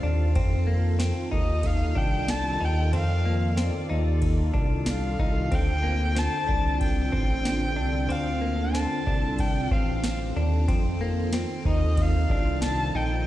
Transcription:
Already playing: string machine D3 C4 F4 A4
0.03 analog synth bass D#2, clean electric guitar D4
0.35 analog synth bass F2, string machine D#3, clean electric guitar C4, kick, ride
0.67 clean electric guitar A#3
0.99 clean electric guitar C4, snare, ride, tambourine
1.31 analog synth bass D#2, clean electric guitar D#4, erhu D#5, kick
1.63 erhu F5, kick, ride
1.95 analog synth bass C2, clean electric guitar D4, erhu G5, kick
2.28 erhu A5, snare, ride, tambourine
2.61 analog synth bass D#2, clean electric guitar D#4, erhu G5
2.93 analog synth bass F2, clean electric guitar C4, string machine D5, erhu F5, ride
3.25 clean electric guitar A#3
3.57 clean electric guitar C4, snare, ride, tambourine
3.90 analog synth bass D#2, clean electric guitar D#4
4.22 kick, ride
4.54 analog synth bass C2, clean electric guitar D4, kick
4.86 erhu F5, snare, ride, tambourine
5.19 analog synth bass C2, clean electric guitar D#4, kick
5.51 analog synth bass D2, string machine D3 C4, clean electric guitar C4, erhu G5, kick, ride
5.83 clean electric guitar A#3
6.15 clean electric guitar C4, erhu A5, snare, ride, tambourine
6.47 analog synth bass C2, clean electric guitar D4, kick
6.81 erhu G5, kick, ride
7.12 analog synth bass A1, clean electric guitar C4, kick
7.45 snare, ride, tambourine
7.76 analog synth bass C2, clean electric guitar D4
8.09 analog synth bass D2, clean electric guitar C4, erhu F5, ride
8.41 clean electric guitar A#3
8.74 clean electric guitar C4, erhu A5, snare, ride, tambourine
9.07 analog synth bass C2, clean electric guitar D4, kick
9.39 erhu G5, kick, ride
9.71 analog synth bass A1, clean electric guitar C4, erhu F5, kick
10.04 snare, ride, tambourine
10.36 analog synth bass D#2, clean electric guitar D4
10.68 analog synth bass F2, string machine D#3 F4 A4, clean electric guitar C4, kick, ride
11.01 clean electric guitar A#3
11.32 clean electric guitar C4, snare, ride, tambourine
11.65 analog synth bass D#2, clean electric guitar D#4, erhu D#5, kick
11.97 kick, ride
12.01 erhu F5
12.29 analog synth bass C2, clean electric guitar D4, kick
12.62 erhu A5, snare, ride, tambourine
12.95 analog synth bass A#1, clean electric guitar D#4, erhu G5

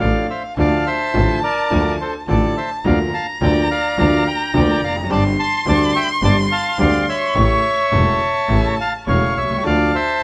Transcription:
0.00 upright piano A1 A2 F3 A3 D4 A4, double bass A1, bandoneon D5 F5, violin F5
0.30 bandoneon C5 E5
0.57 double bass D2, upright piano D2 D3 F3 A3 F4, bandoneon D5 F5, violin A5
0.87 bandoneon C5 E5
1.13 upright piano A1 A2 D3 F3 A3 F4, double bass A1
1.44 bandoneon A#4 D5
1.70 upright piano D2 D3 F3 A3 F4, double bass D2
2.01 bandoneon A4 C5
2.28 double bass A1, upright piano A1 A2 D3 F3 A3 F4, bandoneon A4 D5, violin A5
2.57 bandoneon C5 E5
2.84 double bass D2, upright piano D2 D3 F3 A#3 F4, bandoneon D5 F5, violin A#5
3.14 bandoneon F5 A5
3.41 double bass D2, upright piano D2 D3 F3 A#3 F4, bandoneon D5 G5
3.71 bandoneon D5 F5
3.97 double bass D2, upright piano D2 D3 F3 A#3 F4, bandoneon D5 F5
4.27 bandoneon G5 A#5
4.54 upright piano D2 D3 F3 A#3 F4, double bass D2, bandoneon D5 G5
4.82 double bass F1, bandoneon D5 F5
4.89 upright piano E2
4.96 upright piano F2
5.04 upright piano F#2
5.10 upright piano G1 G2 D3 G3 C4 G4, double bass G1, bandoneon D5 A5, violin C6
5.40 bandoneon A5 C6
5.66 double bass D2, upright piano D2 D3 G3 C4 G4, bandoneon D5 A5
5.96 bandoneon E5 G5
6.22 double bass G1, upright piano G1 G2 D3 G3 C4 G4, bandoneon D5 A5
6.52 bandoneon F5 A5
6.78 double bass D2, upright piano D2 D3 G3 C4 G4, bandoneon D5 F5
7.09 bandoneon C#5 E5
7.35 double bass A1, upright piano A1 A2 C#3 E3 A3 E4, violin C#6
7.92 upright piano E1 E2 C#3 E3 A3 E4, double bass E1, violin A5
8.48 upright piano A1 A2 C#3 E3 A3 E4, double bass A1
8.81 bandoneon F5 A5
9.07 upright piano E1 E2 C#3 E3 A3 E4, double bass E1, bandoneon C#5 F5, violin C#6
9.36 double bass C2, bandoneon C#5 E5
9.43 upright piano B1
9.50 upright piano C2
9.57 upright piano C#2
9.64 upright piano D2 D3 F3 A3 F4, double bass D2, bandoneon D5 F5, violin A5
9.95 bandoneon C5 E5

